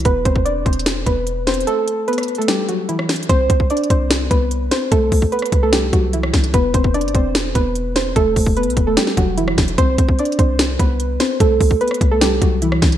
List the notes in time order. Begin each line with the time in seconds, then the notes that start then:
0.00 closed hi-hat
0.05 E1 B3 B4, kick, closed hi-hat
0.25 E1 C4 C5, kick, closed hi-hat
0.36 E1, kick
0.45 D4 D5, closed hi-hat
0.66 E1 C4 C5, kick, closed hi-hat
0.73 closed hi-hat
0.79 closed hi-hat
0.86 snare, closed hi-hat
1.06 E1 B3 B4, kick, closed hi-hat
1.27 closed hi-hat
1.47 C4 C5, snare, closed hi-hat
1.54 closed hi-hat
1.61 closed hi-hat
1.67 A3 A4, closed hi-hat
1.88 closed hi-hat
2.08 B3 B4, closed hi-hat
2.13 closed hi-hat
2.18 cross-stick, closed hi-hat
2.23 closed hi-hat
2.28 closed hi-hat
2.35 A4, closed hi-hat
2.39 A3, closed hi-hat
2.48 G3 G4, snare, closed hi-hat
2.69 F#3 F#4, closed hi-hat
2.89 E3 E4, closed hi-hat
2.99 cross-stick
3.09 snare, closed hi-hat, open hi-hat
3.16 closed hi-hat
3.23 closed hi-hat
3.29 C2 C4 C5, kick, closed hi-hat
3.50 C2 C4 C5, kick, closed hi-hat
3.60 kick
3.70 D4 D5, closed hi-hat
3.77 closed hi-hat
3.84 closed hi-hat
3.90 C2 C4 C5, kick, closed hi-hat
4.11 snare, closed hi-hat
4.31 C2 B3 B4, kick, closed hi-hat
4.51 closed hi-hat
4.71 C4 C5, snare, closed hi-hat
4.92 C2 A3 A4, kick, closed hi-hat
5.12 C2, kick, open hi-hat
5.22 kick
5.32 B3 B4, closed hi-hat
5.39 cross-stick, closed hi-hat
5.46 closed hi-hat
5.52 C2, kick, closed hi-hat
5.63 A3 A4
5.73 G3 G4, snare, closed hi-hat
5.93 C2 F#3 F#4, kick, closed hi-hat
6.13 E3 E4, closed hi-hat
6.23 cross-stick
6.34 C2, kick, snare, closed hi-hat
6.44 closed hi-hat
6.54 E1 B3 B4, kick, closed hi-hat
6.74 E1 C4 C5, kick, closed hi-hat
6.84 kick
6.94 D4 D5, closed hi-hat
7.01 G1, closed hi-hat
7.08 closed hi-hat
7.15 E1 C4 C5, kick, closed hi-hat
7.35 snare, closed hi-hat
7.55 E1 B3 B4, kick, closed hi-hat
7.75 closed hi-hat
7.96 C4 C5, snare, closed hi-hat
8.16 E1 A3 A4, kick, closed hi-hat
8.36 E1, kick, open hi-hat
8.46 kick
8.57 B3 B4, closed hi-hat
8.63 B1, closed hi-hat
8.70 closed hi-hat
8.77 E1, kick, closed hi-hat
8.87 A3 A4
8.97 G3 G4, snare, closed hi-hat
9.07 snare
9.17 E1 F#3 F#4, kick, closed hi-hat
9.38 E3 E4, closed hi-hat
9.48 cross-stick
9.58 E1, kick, snare, closed hi-hat
9.68 closed hi-hat
9.78 C2 C4 C5, kick, closed hi-hat
9.98 C2 C4 C5, kick, closed hi-hat
10.09 kick
10.19 D4 D5, closed hi-hat
10.25 closed hi-hat
10.32 closed hi-hat
10.39 C2 C4 C5, kick, closed hi-hat
10.59 snare, closed hi-hat
10.79 C2 B3 B4, kick, closed hi-hat
11.00 closed hi-hat
11.20 C4 C5, snare, closed hi-hat
11.40 C2 A3 A4, kick, closed hi-hat
11.61 C2, kick, open hi-hat
11.71 kick
11.81 B3 B4, closed hi-hat
11.88 cross-stick, closed hi-hat
11.94 closed hi-hat
12.01 C2, kick, closed hi-hat
12.11 A3 A4
12.21 G3 G4, snare, closed hi-hat
12.41 C2 F#3 F#4, kick, closed hi-hat
12.62 E3 E4, closed hi-hat
12.72 cross-stick
12.82 C2, kick, snare, closed hi-hat
12.92 closed hi-hat